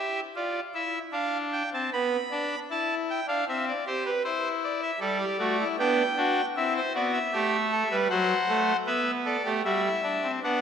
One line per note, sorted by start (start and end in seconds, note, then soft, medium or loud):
0.00 0.20 G4 medium
0.00 0.20 E5 medium
0.35 0.60 F4 medium
0.35 0.60 D5 medium
0.74 0.98 E4 medium
0.74 0.99 E5 medium
1.12 1.63 D4 medium
1.12 1.37 F5 medium
1.52 1.69 G5 medium
1.73 1.89 C4 medium
1.73 1.89 A5 medium
1.93 2.17 B3 medium
1.93 2.59 B5 medium
2.31 2.55 D4 medium
2.70 3.20 E4 medium
2.70 2.94 A5 medium
3.10 3.26 G5 medium
3.27 3.44 D4 medium
3.27 3.44 F5 medium
3.48 3.72 C4 medium
3.48 3.65 E5 medium
3.68 3.84 D5 medium
3.86 4.10 G4 medium
3.86 4.03 C5 medium
4.05 4.22 B4 medium
4.24 4.91 E4 medium
4.24 4.48 C5 medium
4.63 4.80 D5 medium
4.82 4.99 E5 medium
5.00 5.24 G3 medium
5.00 5.17 A4 medium
5.00 5.67 D5 medium
5.20 5.37 G4 medium
5.39 5.63 A3 medium
5.39 5.56 F#4 medium
5.60 5.76 E4 medium
5.78 6.03 B3 medium
5.78 6.03 D4 medium
5.78 6.45 G5 medium
6.17 6.41 D4 medium
6.17 6.41 F#4 medium
6.56 6.80 C4 medium
6.56 6.80 E4 medium
6.56 6.73 E5 medium
6.76 6.92 C5 medium
6.94 7.19 B3 medium
6.94 7.18 F#4 medium
6.94 7.11 D5 medium
7.12 7.96 E5 medium
7.33 7.83 A3 medium
7.33 7.57 G4 medium
7.71 7.88 A4 medium
7.91 8.07 G3 medium
7.91 8.07 B4 medium
8.10 8.34 F#3 medium
8.10 8.76 C5 medium
8.10 8.76 F#5 medium
8.49 8.73 A3 medium
8.86 9.37 B3 medium
8.86 9.10 B4 medium
8.86 9.11 E5 medium
9.25 9.42 A4 medium
9.25 9.49 D5 medium
9.44 9.62 A3 medium
9.44 9.61 G4 medium
9.64 9.88 G3 medium
9.64 9.81 F#4 medium
9.64 10.31 E5 medium
9.85 10.01 E4 medium
10.03 10.27 D4 medium
10.23 10.39 C4 medium
10.43 10.61 B3 medium
10.43 10.61 D4 medium
10.43 10.61 F#5 medium